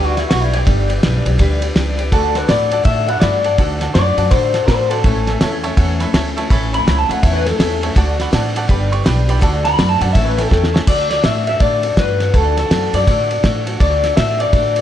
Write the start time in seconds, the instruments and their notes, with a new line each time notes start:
Already playing: upright bass D2, steel-string acoustic guitar G3 D4 G4 B4
0.05 clean electric guitar F#4
0.16 clean electric guitar E4, steel-string acoustic guitar G4 B4, snare, ride
0.20 steel-string acoustic guitar D4
0.29 upright bass B1, steel-string acoustic guitar G3 D4 G4, clean electric guitar F#4, snare, ride
0.34 steel-string acoustic guitar B4
0.41 clean electric guitar E4
0.53 steel-string acoustic guitar D4 G4 B4, clean electric guitar G4, ride
0.65 upright bass G1, steel-string acoustic guitar G3 D4 G4 B4, kick, snare, ride
0.88 steel-string acoustic guitar D4 G4 B4, ride
1.03 upright bass B1, steel-string acoustic guitar G3 D4 G4 B4, snare, ride
1.25 upright bass B1, steel-string acoustic guitar D4 G4 B4, ride
1.38 upright bass D2, steel-string acoustic guitar G3 D4 G4 B4, kick, snare, ride
1.61 steel-string acoustic guitar D4 G4 B4, ride
1.75 upright bass C#2, steel-string acoustic guitar G3 D4 G4 B4, snare, ride
1.97 steel-string acoustic guitar D4 G4 B4, ride
2.12 upright bass D2, steel-string acoustic guitar D3 A3 D4 F#4 A4, clean electric guitar A4, upright piano D5 F#5 A5, kick, ride
2.35 steel-string acoustic guitar D4 F#4 A4, clean electric guitar B4, upright piano D5 F#5 A5, snare, ride
2.47 upright bass A2, steel-string acoustic guitar A3 D4 F#4 A4, clean electric guitar D5, upright piano D5 F#5 B5, snare, ride
2.71 steel-string acoustic guitar D4 F#4 A4, upright piano D5 F#5 A5, ride
2.83 upright bass A2, steel-string acoustic guitar D3 A3 D4 F#4 A4, clean electric guitar E5, upright piano A5, kick, ride
2.87 upright piano D5 F#5
3.06 steel-string acoustic guitar D4 F#4 A4, upright piano D5 F#5 B5, clean electric guitar F#5, ride
3.20 upright bass G2, steel-string acoustic guitar A3 D4 F#4 A4, clean electric guitar D5, upright piano D5 F#5 B5, snare, ride
3.44 steel-string acoustic guitar D4 F#4 A4, upright piano D5 F#5 A5, ride
3.58 upright bass D2, steel-string acoustic guitar D3 A3 D4 F#4 A4, upright piano D5 F#5 A5, kick, ride
3.78 steel-string acoustic guitar D4 F#4 A4, upright piano D5 F#5 A5, snare, ride
3.94 upright bass F#2, steel-string acoustic guitar A3 D4 F#4 A4, clean electric guitar D5, upright piano D5 F#5 A5, snare, ride
4.17 upright bass F#2, steel-string acoustic guitar D4 F#4 A4, upright piano D5 F#5 A5, ride
4.30 upright bass A2, steel-string acoustic guitar D3 A3 D4 F#4 A4, clean electric guitar C5, upright piano D5 F#5 B5, kick, snare, ride
4.54 steel-string acoustic guitar D4 F#4 A4, upright piano D5 F#5 A5, snare, ride
4.67 upright bass A2, steel-string acoustic guitar A3 D4 F#4, clean electric guitar C5, upright piano D5 F#5 A5, kick, snare, ride
4.71 steel-string acoustic guitar A4
4.89 steel-string acoustic guitar F#4 A4, clean electric guitar A4, upright piano D5 F#5 A5, ride
4.94 steel-string acoustic guitar D4
5.04 upright bass A1, steel-string acoustic guitar A2 E3 A3 C#4 E4 A4, upright piano C#5 E5 A5, kick, ride
5.26 steel-string acoustic guitar A3 C#4 E4 A4, upright piano C#5 E5 A5, snare, ride
5.41 upright bass E2, steel-string acoustic guitar A3 C#4 E4, upright piano C#5 E5 A5, snare, ride
5.45 steel-string acoustic guitar A4
5.64 steel-string acoustic guitar A3 C#4 E4 A4, upright piano C#5 E5 A5, ride
5.77 upright bass E2, steel-string acoustic guitar A2 E3 A3 C#4 E4 A4, upright piano C#5 E5 F#5, kick, ride
6.00 steel-string acoustic guitar C#4 E4 A4, upright piano C#5 E5 B5, snare, ride
6.04 steel-string acoustic guitar A3
6.13 upright bass D2, steel-string acoustic guitar A3 C#4 E4 A4, upright piano C#5 E5 A5, snare, ride
6.36 steel-string acoustic guitar A3 C#4 E4 A4, upright piano C#5 E5 A5, ride
6.50 upright bass A1, steel-string acoustic guitar A2 E3 A3 C#4 E4 A4, upright piano C#5 E5 B5, kick, snare, ride
6.72 steel-string acoustic guitar C#4 E4 A4, upright piano C#5 E5 B5, clean electric guitar B5, ride
6.77 steel-string acoustic guitar A3
6.87 upright bass C#2, steel-string acoustic guitar A3 C#4 E4 A4, upright piano C#5 E5 A5, snare, ride
6.98 clean electric guitar A5
7.09 upright bass C#2, steel-string acoustic guitar A3 C#4 E4 A4, upright piano C#5 E5 A5, clean electric guitar F#5, ride
7.22 upright bass E2, steel-string acoustic guitar A2 E3 A3 C#4 E4 A4, upright piano C#5 E5 A5, clean electric guitar E5, kick, ride
7.33 clean electric guitar B4
7.45 steel-string acoustic guitar A3 C#4 E4 A4, clean electric guitar A4, upright piano C#5 E5 A5, snare, ride
7.58 upright bass E2, steel-string acoustic guitar A3 C#4 E4, clean electric guitar A4, upright piano C#5 E5 A5, snare, ride
7.62 steel-string acoustic guitar A4
7.81 steel-string acoustic guitar A3 C#4 E4 A4, upright piano C#5 E5 A5, ride
7.95 upright bass D2, steel-string acoustic guitar D3 A3 D4 F#4 A4, upright piano D5 F#5 A5, kick, snare, ride
8.17 steel-string acoustic guitar D4 F#4 A4, upright piano D5 F#5 B5, snare, ride
8.30 upright bass A2, steel-string acoustic guitar A3 D4 F#4 A4, snare, ride
8.34 upright piano D5 F#5 A5
8.54 steel-string acoustic guitar D4 F#4 A4, upright piano D5 F#5 A5, ride
8.68 upright bass G1, steel-string acoustic guitar G3 D4 G4 B4, upright piano D5 G5 B5, kick, ride
8.89 steel-string acoustic guitar D4 G4 B4, upright piano D5 G5 C#6, ride
9.02 upright bass B1, steel-string acoustic guitar G3 D4 G4 B4, upright piano D5 G5 B5, snare, ride
9.25 steel-string acoustic guitar D4 G4 B4, ride
9.29 upright piano D5 G5 B5
9.39 upright bass D2, steel-string acoustic guitar D3 A3 D4 F#4 A4, upright piano D5 F#5 A5, kick, ride
9.64 steel-string acoustic guitar D4 F#4 A4, upright piano D5 F#5 A5, clean electric guitar B5, snare, ride
9.76 upright bass F#2, steel-string acoustic guitar A3 D4 F#4 A4, upright piano D5 F#5 B5, snare, ride
9.89 clean electric guitar A5
10.00 upright bass F#2, steel-string acoustic guitar D4 F#4 A4, upright piano D5 F#5 A5, clean electric guitar F#5, ride
10.13 upright bass A1, steel-string acoustic guitar A2 E3 A3 C#4 E4 A4, upright piano C#5 E5 A5, clean electric guitar E5, kick, ride
10.25 clean electric guitar B4
10.36 steel-string acoustic guitar A3 C#4 E4 A4, clean electric guitar A4, upright piano C#5 E5 G5, snare, ride
10.49 upright bass E2, steel-string acoustic guitar A3 C#4 E4, clean electric guitar A4, upright piano C#5 E5 G5, kick, snare
10.54 steel-string acoustic guitar A4
10.64 snare
10.73 steel-string acoustic guitar A3 C#4 E4 A4, upright piano C#5 E5 A5, snare
10.87 upright bass D2, steel-string acoustic guitar D3 A3 D4 F#4 A4, clean electric guitar D5, kick, crash
11.09 steel-string acoustic guitar D4 F#4 A4, clean electric guitar D5, snare, ride
11.23 upright bass A2, steel-string acoustic guitar A3 D4 F#4 A4, clean electric guitar E5, snare, ride
11.47 steel-string acoustic guitar D4 F#4 A4, clean electric guitar E5, ride
11.59 upright bass A2, steel-string acoustic guitar D3 A3 D4 F#4 A4, clean electric guitar D5, kick, ride
11.81 steel-string acoustic guitar D4 F#4 A4, ride
11.96 upright bass G2, steel-string acoustic guitar A3 D4 F#4 A4, clean electric guitar B4, kick, snare, ride
12.20 steel-string acoustic guitar D4 F#4 A4, snare, ride
12.34 upright bass D2, steel-string acoustic guitar D3 A3 D4 F#4 A4, clean electric guitar A4, kick, ride
12.57 steel-string acoustic guitar D4 F#4 A4, clean electric guitar A4, snare, ride
12.70 upright bass F#2, steel-string acoustic guitar A3 D4 F#4 A4, snare, ride
12.93 upright bass F#2, steel-string acoustic guitar F#4 A4, clean electric guitar D5, ride
12.97 steel-string acoustic guitar D4
13.07 upright bass A2, steel-string acoustic guitar D3 A3 D4 F#4 A4, kick, snare, ride
13.30 steel-string acoustic guitar D4 F#4 A4, ride
13.43 upright bass A2, steel-string acoustic guitar A3 D4 F#4 A4, kick, snare, ride
13.67 steel-string acoustic guitar D4 F#4 A4, ride
13.80 upright bass D2, steel-string acoustic guitar D3 A3 D4 F#4 A4, clean electric guitar D5, kick, ride
14.03 steel-string acoustic guitar D4 F#4 A4, snare, ride
14.17 upright bass A2, steel-string acoustic guitar A3 D4 F#4 A4, clean electric guitar E5, snare, ride
14.39 steel-string acoustic guitar D4 F#4 A4, clean electric guitar D5, ride
14.53 upright bass A2, steel-string acoustic guitar D3 A3 D4 F#4 A4, kick, ride
14.75 steel-string acoustic guitar F#4 A4, ride